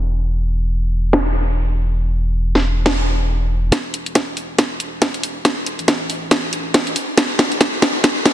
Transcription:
Already playing: sub bass E1
1.13 snare
2.55 snare
2.86 snare
3.72 sub bass E1, kick, snare, closed hi-hat
3.94 closed hi-hat
4.06 closed hi-hat
4.15 kick, snare, closed hi-hat
4.37 open hi-hat
4.58 kick, snare, closed hi-hat
4.80 closed hi-hat
5.02 kick, snare, closed hi-hat
5.14 closed hi-hat
5.23 open hi-hat
5.45 sub bass E1, kick, snare, closed hi-hat
5.66 closed hi-hat
5.79 sub bass A1, closed hi-hat
5.88 kick, snare, closed hi-hat
6.10 open hi-hat
6.31 kick, snare, closed hi-hat
6.53 closed hi-hat
6.74 kick, snare, closed hi-hat
6.87 closed hi-hat
6.96 open hi-hat
7.17 sub bass E1, kick, snare, closed hi-hat
7.39 snare, closed hi-hat
7.52 closed hi-hat
7.61 kick, snare, closed hi-hat
7.82 snare, open hi-hat
8.04 kick, snare, closed hi-hat
8.26 snare, closed hi-hat

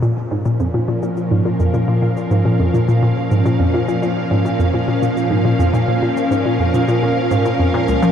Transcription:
Already playing: ambient pad A#2 F3 C#4
0.02 synth arpeggio sound A#2, cabasa
0.17 low woodblock
0.31 synth arpeggio sound G#2
0.45 synth arpeggio sound A#2, cabasa
0.60 synth arpeggio sound F2, ambient pad A#4, cabasa
0.74 synth arpeggio sound A#2
0.83 ambient pad F5
0.88 synth arpeggio sound A#2
1.02 synth arpeggio sound A#2, cabasa
1.17 cabasa
1.31 synth arpeggio sound G#2
1.45 synth arpeggio sound A#2
1.60 synth arpeggio sound F2, cabasa
1.74 synth arpeggio sound A#2, cabasa
1.88 synth arpeggio sound A#2
2.02 synth arpeggio sound A#2, low woodblock
2.17 cabasa
2.31 synth arpeggio sound G#2, cabasa
2.45 synth arpeggio sound A#2, low woodblock
2.60 synth arpeggio sound F2
2.74 synth arpeggio sound A#2, cabasa
2.89 synth arpeggio sound A#2, cabasa
3.03 synth arpeggio sound A#2
3.31 synth arpeggio sound G#2, cabasa
3.46 synth arpeggio sound A#2, cabasa
3.60 synth arpeggio sound F2
3.74 synth arpeggio sound A#2
3.88 synth arpeggio sound A#2, cabasa
4.03 synth arpeggio sound A#2, cabasa
4.31 synth arpeggio sound G#2, low woodblock
4.45 synth arpeggio sound A#2, cabasa
4.60 synth arpeggio sound F2, cabasa
4.74 synth arpeggio sound A#2, low woodblock
4.88 synth arpeggio sound A#2
5.03 synth arpeggio sound A#2, cabasa
5.17 cabasa
5.31 synth arpeggio sound G#2
5.45 synth arpeggio sound A#2
5.59 synth arpeggio sound F2, cabasa
5.74 synth arpeggio sound A#2, cabasa
5.88 synth arpeggio sound A#2
6.03 synth arpeggio sound A#2
6.17 cabasa
6.31 synth arpeggio sound G#2, cabasa
6.45 synth arpeggio sound A#2
6.59 synth arpeggio sound F2, low woodblock
6.74 synth arpeggio sound A#2, cabasa
6.88 synth arpeggio sound A#2, cabasa
7.02 synth arpeggio sound A#2, low woodblock
7.31 synth arpeggio sound G#2, cabasa
7.45 synth arpeggio sound A#2, cabasa
7.60 synth arpeggio sound F2
7.74 synth arpeggio sound A#2
7.88 synth arpeggio sound C#2, cabasa
8.02 synth arpeggio sound F3, cabasa

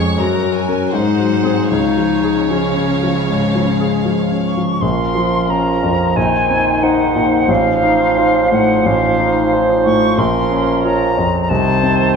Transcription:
Already playing: grand piano F2 G#3 C#4 C#5, cello section F2, violin section C#5 C#6
0.17 grand piano F#2, cello section F#2, clarinet F#4, violin section A#4 A#5
0.43 grand piano F#3
0.56 violin section G#5
0.69 grand piano C#4 A#4
0.92 cello section G#2, grand piano G#2, clarinet D#4, violin section C5 F#5
1.19 grand piano F#3
1.44 grand piano C4 G#4
1.68 grand piano C#2, cello section C#3, clarinet D#4, violin section C#5 F5
1.97 grand piano F3
2.24 grand piano G#4
2.51 grand piano F3, clarinet C#4, violin section F5
2.77 grand piano C#4
3.03 grand piano F3
3.29 grand piano G#2
3.55 grand piano F3
3.80 grand piano G#4
4.05 grand piano F3
4.32 grand piano C#4
4.45 flute C#6
4.57 grand piano F3
4.81 grand piano A#1, bassoon F3, clarinet C#4, cor anglais A#4, flute C6
5.15 grand piano F3
5.48 grand piano C#4 A#4, flute A#5
5.83 grand piano F2
6.16 grand piano A#1, bassoon D#3, clarinet D#4, cor anglais C5, flute G#5
6.50 grand piano C4
6.83 grand piano D#4 C5, flute F#5
7.15 grand piano A#2
7.48 grand piano A1, bassoon F3, flute F5
7.83 grand piano D#4
8.18 grand piano F4 C5
8.52 grand piano A2, flute F#5
8.86 grand piano A1, flute F5
9.20 grand piano D#4
9.53 grand piano F4 C5
9.85 grand piano A2, flute C#6
10.18 grand piano A#1, clarinet C#4, cor anglais A#4, flute C6
10.51 grand piano C#4
10.84 grand piano F4 C#5, flute A#5
11.17 grand piano F2
11.42 flute A#5
11.49 grand piano C2, bassoon D#3, clarinet C4, cor anglais C5, flute A5
11.83 grand piano C4

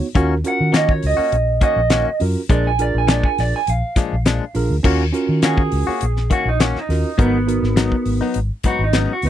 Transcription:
0.15 fingered electric bass D#2, clean electric guitar D#3 A#3 C#4 F#4, tine electric piano C#4 F4 F#4 A#4, kick, closed hi-hat
0.44 tine electric piano C#4 F4 F#4 A#4, clean electric guitar F#5, closed hi-hat
0.60 fingered electric bass D#3
0.73 clean electric guitar D#3 A#3 C#4 F#4 D#5, snare, closed hi-hat
0.89 clean electric guitar C#5, kick
1.03 fingered electric bass C#2, open hi-hat
1.07 clean electric guitar D#5
1.17 clean electric guitar A#3 C#4 F#4
1.32 fingered electric bass A#1, closed hi-hat
1.61 clean electric guitar D#3 A#3 C#4 F#4 D#5, kick, closed hi-hat
1.76 fingered electric bass A#1
1.90 clean electric guitar D#3 A#3 C#4 F#4, snare, closed hi-hat
2.20 fingered electric bass F#2, tine electric piano C#4 F4 F#4 A#4, open hi-hat
2.49 fingered electric bass A#1, clean electric guitar A#2 F3 G#3 D4 D5, tine electric piano D4 F4 G#4 A#4, kick, closed hi-hat
2.67 clean electric guitar G#5
2.79 tine electric piano D4 F4 G#4 A#4, clean electric guitar D5, closed hi-hat
2.94 fingered electric bass A#1, clean electric guitar G#5
3.08 clean electric guitar A#2 F3 G#3 D4 D5, snare, closed hi-hat
3.23 clean electric guitar G#5, kick
3.38 fingered electric bass A#1, clean electric guitar D5, snare, open hi-hat
3.56 clean electric guitar G#5
3.67 fingered electric bass A#1, clean electric guitar F5, closed hi-hat
3.96 clean electric guitar A#2 F3 G#3 D4, muted fingered electric bass stroke, kick, snare, closed hi-hat
4.13 fingered electric bass A#1
4.26 clean electric guitar A#2 F3 G#3 D4, snare, closed hi-hat
4.54 fingered electric bass A#1, tine electric piano D4 F4 G#4 A#4, open hi-hat
4.70 fingered electric bass D2
4.83 fingered electric bass D#2, clean electric guitar D#3 A#3 C#4 F#4, tine electric piano C#4 F4 F#4 A#4, kick, crash
5.13 tine electric piano C#4 F4 F#4 A#4, closed hi-hat
5.29 fingered electric bass D#3
5.42 clean electric guitar D#3 A#3 C#4 F#4 G#4, snare, closed hi-hat
5.58 kick
5.72 fingered electric bass C#2, open hi-hat
5.87 clean electric guitar A#3 C#4 F#4, muted fingered electric bass stroke
6.01 fingered electric bass A#1, closed hi-hat
6.17 snare
6.30 clean electric guitar D#3 A#3 C#4 F#4, kick, closed hi-hat
6.45 fingered electric bass A#1, clean electric guitar D#4
6.60 clean electric guitar D#3 A#3 C#4 F#4, snare, closed hi-hat
6.76 clean electric guitar D#4, snare
6.89 fingered electric bass D#2, tine electric piano C#4 F4 F#4 A#4, snare, open hi-hat
7.18 fingered electric bass G#1, clean electric guitar G#2 F#3 B3 D#4, tine electric piano B3 D#4 F#4 A#4, kick, closed hi-hat
7.47 tine electric piano B3 D#4 F#4 A#4, closed hi-hat
7.62 fingered electric bass G#1, snare
7.76 clean electric guitar G#2 F#3 B3 D#4, snare, closed hi-hat
7.92 kick
8.05 fingered electric bass G#1, open hi-hat
8.21 clean electric guitar F#3 B3 D#4
8.34 fingered electric bass G#1, closed hi-hat
8.63 clean electric guitar G#2 F#3 B3 D#4, muted fingered electric bass stroke, kick, closed hi-hat
8.68 clean electric guitar F#4
8.79 fingered electric bass G#1
8.84 clean electric guitar D#4
8.93 clean electric guitar G#2 F#3 B3 D#4, snare, closed hi-hat
8.97 clean electric guitar C#4
9.13 clean electric guitar F#4
9.22 fingered electric bass D2, tine electric piano B3 D#4 F#4 B4, open hi-hat

